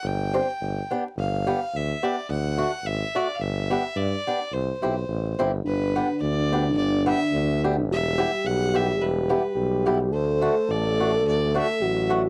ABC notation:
X:1
M:2/4
L:1/16
Q:"Swing" 1/4=107
K:C
V:1 name="Fiddle"
g6 z2 | f4 e2 d2 | ^f4 e2 d3/2 =f/2 | e4 d4 |
c6 z2 | [K:G] B4 d4 | d2 e4 z2 | e4 f2 e2 |
B6 z2 | c4 d4 | d2 e4 z2 |]
V:2 name="Soft synth lead"
z8 | z8 | z8 | z8 |
z8 | [K:G] D8- | D8 | G8- |
G4 G4 | A8- | A4 F4 |]
V:3 name="Steel-string acoustic guitar"
z2 [CDG]2 z2 [B,DG]2 | z2 [B,DG]2 z2 [B,DG]2 | z2 [A,D^F]2 z2 [A,DF]2 | z2 [B,DG]2 z2 [B,DG]2 |
z2 [CEG]2 z2 [CEG]2 | [K:G] z2 [B,DG]2 z2 [B,DG]2 | z2 [B,DG]2 z2 [B,DG]2 | z2 [B,EG]2 z2 [B,EG]2 |
z2 [B,EG]2 z2 [B,EG]2 | z2 [A,DF]2 z2 [A,DF]2 | z2 [A,DF]2 z2 [A,DF]2 |]
V:4 name="Tuba" clef=bass
G,,,4 G,,,2 z2 | G,,,4 D,,2 z2 | D,,4 _A,,,2 z2 | G,,,4 G,,2 z2 |
C,,2 B,,,2 A,,,2 G,,,2 | [K:G] G,,,4 D,,4 | G,,,4 D,,4 | E,,,4 B,,,4 |
E,,,4 B,,,4 | D,,4 A,,,4 | D,,4 A,,,4 |]